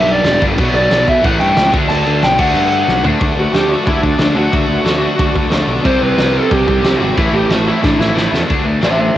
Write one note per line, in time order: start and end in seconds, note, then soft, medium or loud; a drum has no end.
0.00 0.19 B1 loud
0.00 0.39 G2 loud
0.00 0.40 D3 loud
0.00 0.38 G3 loud
0.00 0.11 E5 medium
0.08 0.43 D5 medium
0.08 crash medium
0.24 0.38 E1 loud
0.24 snare loud
0.24 crash medium
0.40 0.58 G1 medium
0.40 0.57 G2 medium
0.40 0.55 D3 medium
0.40 0.56 G3 medium
0.40 kick medium
0.40 crash medium
0.56 0.72 B1 loud
0.56 1.21 B2 loud
0.56 1.22 F#3 medium
0.56 1.23 B3 loud
0.56 kick loud
0.56 crash loud
0.73 0.88 B1 medium
0.73 1.05 D5 medium
0.73 crash medium
0.90 1.04 B1 loud
0.90 snare loud
0.90 crash medium
1.08 1.21 B1 medium
1.08 1.24 E5 medium
1.08 kick medium
1.08 crash medium
1.22 1.38 A1 loud
1.22 1.71 A2 medium
1.22 1.71 E3 medium
1.22 1.72 A3 loud
1.22 1.40 F#5 loud
1.22 kick loud
1.22 crash medium
1.40 1.54 G2 medium
1.40 1.71 G5 loud
1.40 crash medium
1.57 1.71 C#2 loud
1.57 snare loud
1.57 crash medium
1.71 1.87 D2 loud
1.71 2.37 D3 medium
1.71 2.37 A3 medium
1.71 2.38 D4 loud
1.71 kick loud
1.71 crash medium
1.88 2.04 D2 loud
1.88 2.23 A5 loud
1.88 crash medium
2.06 2.20 D2 medium
2.06 crash medium
2.23 2.37 B1 medium
2.23 2.39 G5 loud
2.23 snare loud
2.23 crash medium
2.38 2.53 D2 medium
2.38 3.03 D3 medium
2.38 3.03 A3 loud
2.38 3.02 D4 loud
2.38 3.05 F#5 medium
2.38 kick loud
2.38 crash loud
2.54 2.83 G2 loud
2.54 crash medium
2.72 crash medium
2.88 3.02 B1 loud
2.88 snare medium
3.03 3.18 D2 loud
3.03 3.18 D3 medium
3.03 3.18 A3 medium
3.03 3.19 D4 medium
3.03 floor tom medium
3.19 3.31 D2 medium
3.19 3.52 D3 medium
3.19 3.52 A3 loud
3.19 3.53 D4 medium
3.19 kick loud
3.19 crash medium
3.36 3.47 D2 medium
3.36 3.54 F#4 medium
3.52 3.74 D2 loud
3.52 3.69 D3 medium
3.52 3.69 A3 medium
3.52 3.68 D4 loud
3.52 3.72 G4 loud
3.52 snare loud
3.52 crash medium
3.69 3.83 D3 medium
3.69 3.83 A3 medium
3.69 3.83 D4 loud
3.69 3.88 F#4 loud
3.84 3.97 D2 loud
3.84 4.17 D3 medium
3.84 4.17 A3 medium
3.84 4.17 D4 loud
3.84 4.02 E4 loud
3.84 kick loud
3.84 crash medium
4.02 4.13 D2 medium
4.02 4.18 D4 medium
4.02 kick medium
4.18 4.29 D2 medium
4.18 4.34 D3 medium
4.18 4.34 A3 medium
4.18 4.33 D4 loud
4.18 4.37 D4 medium
4.18 snare loud
4.18 crash medium
4.34 4.46 D2 medium
4.34 4.50 D3 medium
4.34 4.51 A3 medium
4.34 4.51 D4 medium
4.34 5.31 F#4 loud
4.51 4.63 D2 medium
4.51 4.83 D3 medium
4.51 4.84 A3 loud
4.51 4.84 D4 loud
4.51 kick loud
4.51 crash medium
4.68 4.79 D2 loud
4.84 5.05 D2 medium
4.84 5.01 D3 medium
4.84 5.00 A3 loud
4.84 5.00 D4 loud
4.84 snare loud
4.84 crash medium
5.01 5.17 D3 medium
5.01 5.17 A3 medium
5.01 5.18 D4 loud
5.18 5.29 D2 loud
5.18 5.49 D3 medium
5.18 5.49 A3 medium
5.18 5.50 D4 loud
5.18 kick loud
5.18 crash medium
5.35 5.46 D2 loud
5.35 kick medium
5.50 5.61 D2 loud
5.50 5.67 D3 medium
5.50 5.66 A3 medium
5.50 5.66 D4 medium
5.50 snare loud
5.50 crash medium
5.67 5.78 B1 loud
5.67 5.83 D3 medium
5.67 5.83 A3 medium
5.67 5.83 D4 medium
5.84 5.95 C2 loud
5.84 6.16 C3 medium
5.84 6.17 G3 loud
5.84 6.17 C4 loud
5.84 6.02 C5 loud
5.84 kick loud
5.84 crash medium
6.02 6.12 C2 medium
6.02 6.35 B4 loud
6.17 6.38 C2 loud
6.17 6.33 C3 medium
6.17 6.33 G3 loud
6.17 6.32 C4 loud
6.17 snare loud
6.17 crash medium
6.33 6.48 C3 medium
6.33 6.49 G3 loud
6.33 6.49 C4 loud
6.33 6.50 A4 loud
6.49 6.61 C2 loud
6.49 6.81 C3 loud
6.49 6.82 G3 medium
6.49 6.82 C4 loud
6.49 6.66 G4 loud
6.49 kick loud
6.49 crash medium
6.67 6.78 C2 medium
6.67 6.97 G4 loud
6.67 kick medium
6.82 6.93 C2 loud
6.82 6.99 C3 medium
6.82 6.99 G3 medium
6.82 6.99 C4 medium
6.82 snare loud
6.82 crash medium
6.96 7.00 E4 medium
6.96 7.17 F#4 medium
7.00 7.10 G#1 loud
7.00 7.16 C3 medium
7.00 7.16 G3 medium
7.00 7.16 C4 loud
7.16 7.27 A1 loud
7.16 7.48 A2 medium
7.16 7.49 E3 loud
7.16 7.49 A3 loud
7.16 7.34 E4 loud
7.16 kick loud
7.16 crash medium
7.33 7.43 A1 loud
7.33 7.50 G4 medium
7.49 7.70 A1 loud
7.49 7.66 A2 medium
7.49 7.65 E3 medium
7.49 7.65 A3 medium
7.49 7.67 F#4 medium
7.49 snare loud
7.49 crash medium
7.66 7.81 A2 medium
7.66 7.82 E3 loud
7.66 7.82 A3 loud
7.66 7.82 E4 medium
7.82 7.94 A1 loud
7.82 8.13 A2 medium
7.82 8.14 E3 medium
7.82 8.14 A3 loud
7.82 7.99 D4 medium
7.82 kick loud
7.82 snare medium
7.99 8.10 A1 loud
7.99 8.30 E4 medium
7.99 snare medium
8.14 8.26 A1 medium
8.14 8.31 A2 medium
8.14 8.31 E3 medium
8.14 8.30 A3 medium
8.14 snare medium
8.32 8.43 E2 medium
8.32 8.47 A2 medium
8.32 8.48 E3 medium
8.32 8.47 A3 loud
8.32 snare loud
8.48 8.77 D2 loud
8.48 8.64 D3 medium
8.48 8.64 A3 medium
8.48 8.64 D4 medium
8.48 kick loud
8.48 crash medium
8.65 8.80 D3 medium
8.65 8.80 A3 medium
8.65 8.82 D4 medium
8.81 9.09 A1 medium
8.81 8.96 D3 medium
8.81 8.97 A3 medium
8.81 8.98 D4 loud
8.81 8.99 C5 medium
8.81 8.99 E5 medium
8.81 snare loud
8.81 crash medium
8.98 9.13 D3 medium
8.98 9.13 A3 medium
8.98 9.15 D4 medium
8.98 9.15 C5 medium
8.98 9.16 E5 medium